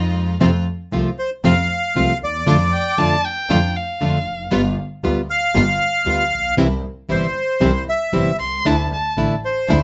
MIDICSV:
0, 0, Header, 1, 6, 480
1, 0, Start_track
1, 0, Key_signature, -1, "major"
1, 0, Tempo, 515907
1, 381, Time_signature, 4, 2, 24, 8
1, 9147, End_track
2, 0, Start_track
2, 0, Title_t, "Violin"
2, 0, Program_c, 0, 40
2, 0, Note_on_c, 0, 75, 93
2, 142, Note_off_c, 0, 75, 0
2, 2538, Note_on_c, 0, 79, 88
2, 2778, Note_on_c, 0, 81, 98
2, 2791, Note_off_c, 0, 79, 0
2, 3023, Note_on_c, 0, 79, 107
2, 3037, Note_off_c, 0, 81, 0
2, 3500, Note_on_c, 0, 77, 85
2, 3514, Note_off_c, 0, 79, 0
2, 4451, Note_off_c, 0, 77, 0
2, 7815, Note_on_c, 0, 84, 97
2, 8061, Note_on_c, 0, 81, 94
2, 8075, Note_off_c, 0, 84, 0
2, 8299, Note_off_c, 0, 81, 0
2, 8312, Note_on_c, 0, 81, 83
2, 8640, Note_off_c, 0, 81, 0
2, 9147, End_track
3, 0, Start_track
3, 0, Title_t, "Bandoneon"
3, 0, Program_c, 1, 23
3, 1104, Note_on_c, 1, 72, 81
3, 1212, Note_off_c, 1, 72, 0
3, 1345, Note_on_c, 1, 77, 104
3, 2024, Note_off_c, 1, 77, 0
3, 2083, Note_on_c, 1, 74, 92
3, 2991, Note_off_c, 1, 74, 0
3, 4932, Note_on_c, 1, 77, 123
3, 6090, Note_off_c, 1, 77, 0
3, 6617, Note_on_c, 1, 72, 83
3, 7296, Note_off_c, 1, 72, 0
3, 7339, Note_on_c, 1, 76, 83
3, 7784, Note_off_c, 1, 76, 0
3, 8791, Note_on_c, 1, 72, 80
3, 9120, Note_off_c, 1, 72, 0
3, 9147, End_track
4, 0, Start_track
4, 0, Title_t, "String section"
4, 0, Program_c, 2, 48
4, 0, Note_on_c, 2, 56, 98
4, 0, Note_on_c, 2, 63, 90
4, 0, Note_on_c, 2, 65, 105
4, 326, Note_off_c, 2, 56, 0
4, 328, Note_off_c, 2, 63, 0
4, 328, Note_off_c, 2, 65, 0
4, 378, Note_on_c, 2, 57, 80
4, 379, Note_on_c, 2, 65, 85
4, 380, Note_on_c, 2, 60, 68
4, 582, Note_off_c, 2, 57, 0
4, 583, Note_off_c, 2, 60, 0
4, 583, Note_off_c, 2, 65, 0
4, 859, Note_on_c, 2, 57, 51
4, 862, Note_on_c, 2, 65, 56
4, 863, Note_on_c, 2, 60, 47
4, 1062, Note_off_c, 2, 57, 0
4, 1064, Note_off_c, 2, 60, 0
4, 1064, Note_off_c, 2, 65, 0
4, 1337, Note_on_c, 2, 57, 79
4, 1340, Note_on_c, 2, 65, 88
4, 1341, Note_on_c, 2, 60, 81
4, 1541, Note_off_c, 2, 57, 0
4, 1543, Note_off_c, 2, 60, 0
4, 1543, Note_off_c, 2, 65, 0
4, 1817, Note_on_c, 2, 57, 50
4, 1822, Note_on_c, 2, 60, 43
4, 1822, Note_on_c, 2, 65, 54
4, 2020, Note_off_c, 2, 57, 0
4, 2022, Note_off_c, 2, 60, 0
4, 2022, Note_off_c, 2, 65, 0
4, 2299, Note_on_c, 2, 57, 84
4, 2299, Note_on_c, 2, 62, 74
4, 2305, Note_on_c, 2, 65, 90
4, 2500, Note_off_c, 2, 57, 0
4, 2501, Note_off_c, 2, 62, 0
4, 2503, Note_off_c, 2, 65, 0
4, 2781, Note_on_c, 2, 57, 55
4, 2785, Note_on_c, 2, 62, 49
4, 2786, Note_on_c, 2, 65, 58
4, 2980, Note_off_c, 2, 57, 0
4, 2982, Note_off_c, 2, 62, 0
4, 2983, Note_off_c, 2, 65, 0
4, 3254, Note_on_c, 2, 57, 90
4, 3257, Note_on_c, 2, 62, 80
4, 3257, Note_on_c, 2, 65, 92
4, 3456, Note_off_c, 2, 57, 0
4, 3457, Note_off_c, 2, 62, 0
4, 3457, Note_off_c, 2, 65, 0
4, 3733, Note_on_c, 2, 57, 54
4, 3735, Note_on_c, 2, 62, 47
4, 3735, Note_on_c, 2, 65, 61
4, 3933, Note_off_c, 2, 57, 0
4, 3934, Note_off_c, 2, 62, 0
4, 3935, Note_off_c, 2, 65, 0
4, 4198, Note_on_c, 2, 55, 85
4, 4198, Note_on_c, 2, 59, 74
4, 4202, Note_on_c, 2, 65, 97
4, 4404, Note_off_c, 2, 55, 0
4, 4404, Note_off_c, 2, 59, 0
4, 4406, Note_off_c, 2, 65, 0
4, 4686, Note_on_c, 2, 55, 54
4, 4688, Note_on_c, 2, 59, 51
4, 4690, Note_on_c, 2, 65, 59
4, 4887, Note_off_c, 2, 55, 0
4, 4888, Note_off_c, 2, 59, 0
4, 4889, Note_off_c, 2, 65, 0
4, 5163, Note_on_c, 2, 55, 84
4, 5163, Note_on_c, 2, 59, 76
4, 5166, Note_on_c, 2, 65, 97
4, 5365, Note_off_c, 2, 55, 0
4, 5365, Note_off_c, 2, 59, 0
4, 5366, Note_off_c, 2, 65, 0
4, 5642, Note_on_c, 2, 55, 47
4, 5644, Note_on_c, 2, 59, 47
4, 5645, Note_on_c, 2, 65, 58
4, 5845, Note_off_c, 2, 55, 0
4, 5846, Note_off_c, 2, 59, 0
4, 5846, Note_off_c, 2, 65, 0
4, 6124, Note_on_c, 2, 55, 83
4, 6125, Note_on_c, 2, 60, 75
4, 6130, Note_on_c, 2, 64, 87
4, 6325, Note_off_c, 2, 55, 0
4, 6326, Note_off_c, 2, 60, 0
4, 6328, Note_off_c, 2, 64, 0
4, 6608, Note_on_c, 2, 55, 48
4, 6611, Note_on_c, 2, 60, 49
4, 6613, Note_on_c, 2, 64, 56
4, 6808, Note_off_c, 2, 55, 0
4, 6809, Note_off_c, 2, 60, 0
4, 6810, Note_off_c, 2, 64, 0
4, 7086, Note_on_c, 2, 55, 83
4, 7086, Note_on_c, 2, 60, 71
4, 7089, Note_on_c, 2, 64, 87
4, 7288, Note_off_c, 2, 55, 0
4, 7288, Note_off_c, 2, 60, 0
4, 7289, Note_off_c, 2, 64, 0
4, 7572, Note_on_c, 2, 55, 44
4, 7573, Note_on_c, 2, 60, 44
4, 7578, Note_on_c, 2, 64, 52
4, 7774, Note_off_c, 2, 55, 0
4, 7775, Note_off_c, 2, 60, 0
4, 7777, Note_off_c, 2, 64, 0
4, 8052, Note_on_c, 2, 57, 86
4, 8054, Note_on_c, 2, 62, 76
4, 8054, Note_on_c, 2, 64, 86
4, 8256, Note_off_c, 2, 57, 0
4, 8257, Note_off_c, 2, 62, 0
4, 8257, Note_off_c, 2, 64, 0
4, 8534, Note_on_c, 2, 57, 47
4, 8539, Note_on_c, 2, 62, 44
4, 8540, Note_on_c, 2, 64, 57
4, 8737, Note_off_c, 2, 57, 0
4, 8739, Note_off_c, 2, 62, 0
4, 8740, Note_off_c, 2, 64, 0
4, 9011, Note_on_c, 2, 57, 81
4, 9015, Note_on_c, 2, 64, 90
4, 9017, Note_on_c, 2, 62, 75
4, 9147, Note_off_c, 2, 57, 0
4, 9147, Note_off_c, 2, 62, 0
4, 9147, Note_off_c, 2, 64, 0
4, 9147, End_track
5, 0, Start_track
5, 0, Title_t, "Nylon-string guitar"
5, 0, Program_c, 3, 24
5, 377, Note_on_c, 3, 48, 86
5, 378, Note_on_c, 3, 53, 86
5, 380, Note_on_c, 3, 57, 75
5, 381, Note_on_c, 3, 60, 92
5, 385, Note_on_c, 3, 65, 81
5, 462, Note_off_c, 3, 48, 0
5, 463, Note_off_c, 3, 53, 0
5, 464, Note_off_c, 3, 57, 0
5, 464, Note_off_c, 3, 60, 0
5, 466, Note_off_c, 3, 65, 0
5, 859, Note_on_c, 3, 48, 69
5, 860, Note_on_c, 3, 53, 75
5, 864, Note_on_c, 3, 57, 64
5, 864, Note_on_c, 3, 60, 72
5, 869, Note_on_c, 3, 65, 77
5, 1017, Note_off_c, 3, 48, 0
5, 1017, Note_off_c, 3, 53, 0
5, 1019, Note_off_c, 3, 57, 0
5, 1020, Note_off_c, 3, 60, 0
5, 1022, Note_off_c, 3, 65, 0
5, 1338, Note_on_c, 3, 48, 81
5, 1341, Note_on_c, 3, 53, 87
5, 1346, Note_on_c, 3, 57, 80
5, 1346, Note_on_c, 3, 60, 82
5, 1350, Note_on_c, 3, 65, 84
5, 1423, Note_off_c, 3, 48, 0
5, 1425, Note_off_c, 3, 53, 0
5, 1427, Note_off_c, 3, 57, 0
5, 1427, Note_off_c, 3, 60, 0
5, 1429, Note_off_c, 3, 65, 0
5, 1821, Note_on_c, 3, 48, 69
5, 1824, Note_on_c, 3, 53, 67
5, 1825, Note_on_c, 3, 57, 65
5, 1827, Note_on_c, 3, 60, 66
5, 1829, Note_on_c, 3, 65, 76
5, 1977, Note_off_c, 3, 48, 0
5, 1978, Note_off_c, 3, 53, 0
5, 1979, Note_off_c, 3, 57, 0
5, 1980, Note_off_c, 3, 60, 0
5, 1981, Note_off_c, 3, 65, 0
5, 2294, Note_on_c, 3, 50, 96
5, 2301, Note_on_c, 3, 57, 85
5, 2302, Note_on_c, 3, 62, 85
5, 2305, Note_on_c, 3, 65, 93
5, 2379, Note_off_c, 3, 50, 0
5, 2383, Note_off_c, 3, 57, 0
5, 2383, Note_off_c, 3, 62, 0
5, 2385, Note_off_c, 3, 65, 0
5, 2772, Note_on_c, 3, 50, 66
5, 2774, Note_on_c, 3, 57, 68
5, 2778, Note_on_c, 3, 62, 80
5, 2784, Note_on_c, 3, 65, 78
5, 2931, Note_off_c, 3, 50, 0
5, 2932, Note_off_c, 3, 57, 0
5, 2934, Note_off_c, 3, 62, 0
5, 2937, Note_off_c, 3, 65, 0
5, 3250, Note_on_c, 3, 50, 82
5, 3255, Note_on_c, 3, 57, 85
5, 3258, Note_on_c, 3, 62, 89
5, 3261, Note_on_c, 3, 65, 99
5, 3335, Note_off_c, 3, 50, 0
5, 3338, Note_off_c, 3, 57, 0
5, 3339, Note_off_c, 3, 62, 0
5, 3341, Note_off_c, 3, 65, 0
5, 3731, Note_on_c, 3, 50, 71
5, 3734, Note_on_c, 3, 57, 74
5, 3736, Note_on_c, 3, 62, 75
5, 3736, Note_on_c, 3, 65, 69
5, 3888, Note_off_c, 3, 50, 0
5, 3889, Note_off_c, 3, 57, 0
5, 3890, Note_off_c, 3, 62, 0
5, 3890, Note_off_c, 3, 65, 0
5, 4201, Note_on_c, 3, 55, 84
5, 4207, Note_on_c, 3, 59, 93
5, 4210, Note_on_c, 3, 65, 91
5, 4288, Note_off_c, 3, 55, 0
5, 4291, Note_off_c, 3, 59, 0
5, 4292, Note_off_c, 3, 65, 0
5, 4686, Note_on_c, 3, 55, 67
5, 4689, Note_on_c, 3, 59, 74
5, 4695, Note_on_c, 3, 65, 76
5, 4842, Note_off_c, 3, 55, 0
5, 4843, Note_off_c, 3, 59, 0
5, 4847, Note_off_c, 3, 65, 0
5, 5158, Note_on_c, 3, 55, 82
5, 5161, Note_on_c, 3, 59, 87
5, 5165, Note_on_c, 3, 65, 91
5, 5244, Note_off_c, 3, 55, 0
5, 5246, Note_off_c, 3, 59, 0
5, 5248, Note_off_c, 3, 65, 0
5, 5638, Note_on_c, 3, 55, 61
5, 5641, Note_on_c, 3, 59, 73
5, 5647, Note_on_c, 3, 65, 75
5, 5797, Note_off_c, 3, 55, 0
5, 5799, Note_off_c, 3, 59, 0
5, 5802, Note_off_c, 3, 65, 0
5, 6116, Note_on_c, 3, 48, 88
5, 6117, Note_on_c, 3, 52, 89
5, 6121, Note_on_c, 3, 55, 97
5, 6124, Note_on_c, 3, 60, 92
5, 6124, Note_on_c, 3, 64, 98
5, 6203, Note_off_c, 3, 48, 0
5, 6203, Note_off_c, 3, 52, 0
5, 6205, Note_off_c, 3, 55, 0
5, 6207, Note_off_c, 3, 60, 0
5, 6207, Note_off_c, 3, 64, 0
5, 6593, Note_on_c, 3, 48, 62
5, 6599, Note_on_c, 3, 52, 70
5, 6599, Note_on_c, 3, 55, 72
5, 6602, Note_on_c, 3, 60, 67
5, 6603, Note_on_c, 3, 64, 79
5, 6755, Note_off_c, 3, 48, 0
5, 6758, Note_off_c, 3, 52, 0
5, 6758, Note_off_c, 3, 55, 0
5, 6759, Note_off_c, 3, 60, 0
5, 6760, Note_off_c, 3, 64, 0
5, 7075, Note_on_c, 3, 48, 74
5, 7078, Note_on_c, 3, 52, 79
5, 7080, Note_on_c, 3, 55, 87
5, 7082, Note_on_c, 3, 60, 96
5, 7082, Note_on_c, 3, 64, 80
5, 7163, Note_off_c, 3, 48, 0
5, 7164, Note_off_c, 3, 52, 0
5, 7165, Note_off_c, 3, 55, 0
5, 7167, Note_off_c, 3, 60, 0
5, 7167, Note_off_c, 3, 64, 0
5, 7565, Note_on_c, 3, 48, 65
5, 7565, Note_on_c, 3, 55, 74
5, 7566, Note_on_c, 3, 52, 62
5, 7569, Note_on_c, 3, 64, 65
5, 7570, Note_on_c, 3, 60, 74
5, 7725, Note_off_c, 3, 48, 0
5, 7725, Note_off_c, 3, 55, 0
5, 7726, Note_off_c, 3, 52, 0
5, 7727, Note_off_c, 3, 64, 0
5, 7728, Note_off_c, 3, 60, 0
5, 8049, Note_on_c, 3, 50, 78
5, 8051, Note_on_c, 3, 57, 78
5, 8055, Note_on_c, 3, 62, 88
5, 8057, Note_on_c, 3, 64, 97
5, 8135, Note_off_c, 3, 50, 0
5, 8136, Note_off_c, 3, 57, 0
5, 8138, Note_off_c, 3, 62, 0
5, 8139, Note_off_c, 3, 64, 0
5, 8532, Note_on_c, 3, 50, 60
5, 8539, Note_on_c, 3, 57, 65
5, 8540, Note_on_c, 3, 62, 75
5, 8543, Note_on_c, 3, 64, 71
5, 8691, Note_off_c, 3, 50, 0
5, 8694, Note_off_c, 3, 57, 0
5, 8694, Note_off_c, 3, 62, 0
5, 8696, Note_off_c, 3, 64, 0
5, 9020, Note_on_c, 3, 50, 81
5, 9025, Note_on_c, 3, 57, 76
5, 9026, Note_on_c, 3, 62, 91
5, 9029, Note_on_c, 3, 64, 96
5, 9102, Note_off_c, 3, 50, 0
5, 9104, Note_off_c, 3, 57, 0
5, 9105, Note_off_c, 3, 62, 0
5, 9106, Note_off_c, 3, 64, 0
5, 9147, End_track
6, 0, Start_track
6, 0, Title_t, "Double bass"
6, 0, Program_c, 4, 43
6, 0, Note_on_c, 4, 41, 105
6, 329, Note_off_c, 4, 41, 0
6, 376, Note_on_c, 4, 41, 90
6, 581, Note_off_c, 4, 41, 0
6, 859, Note_on_c, 4, 36, 56
6, 1062, Note_off_c, 4, 36, 0
6, 1339, Note_on_c, 4, 41, 97
6, 1542, Note_off_c, 4, 41, 0
6, 1819, Note_on_c, 4, 36, 63
6, 2021, Note_off_c, 4, 36, 0
6, 2059, Note_on_c, 4, 39, 60
6, 2293, Note_off_c, 4, 39, 0
6, 2298, Note_on_c, 4, 41, 95
6, 2500, Note_off_c, 4, 41, 0
6, 2778, Note_on_c, 4, 41, 64
6, 2979, Note_off_c, 4, 41, 0
6, 3252, Note_on_c, 4, 41, 101
6, 3455, Note_off_c, 4, 41, 0
6, 3735, Note_on_c, 4, 41, 62
6, 3934, Note_off_c, 4, 41, 0
6, 3970, Note_on_c, 4, 29, 60
6, 4210, Note_off_c, 4, 29, 0
6, 4214, Note_on_c, 4, 31, 101
6, 4412, Note_off_c, 4, 31, 0
6, 4688, Note_on_c, 4, 38, 67
6, 4888, Note_off_c, 4, 38, 0
6, 5164, Note_on_c, 4, 31, 101
6, 5365, Note_off_c, 4, 31, 0
6, 5635, Note_on_c, 4, 38, 64
6, 5841, Note_off_c, 4, 38, 0
6, 5881, Note_on_c, 4, 34, 60
6, 6116, Note_off_c, 4, 34, 0
6, 6121, Note_on_c, 4, 36, 91
6, 6324, Note_off_c, 4, 36, 0
6, 6604, Note_on_c, 4, 31, 59
6, 6806, Note_off_c, 4, 31, 0
6, 7083, Note_on_c, 4, 36, 92
6, 7287, Note_off_c, 4, 36, 0
6, 7567, Note_on_c, 4, 31, 62
6, 7772, Note_off_c, 4, 31, 0
6, 7810, Note_on_c, 4, 36, 52
6, 8046, Note_off_c, 4, 36, 0
6, 8052, Note_on_c, 4, 38, 91
6, 8256, Note_off_c, 4, 38, 0
6, 8534, Note_on_c, 4, 33, 58
6, 8737, Note_off_c, 4, 33, 0
6, 9015, Note_on_c, 4, 38, 92
6, 9147, Note_off_c, 4, 38, 0
6, 9147, End_track
0, 0, End_of_file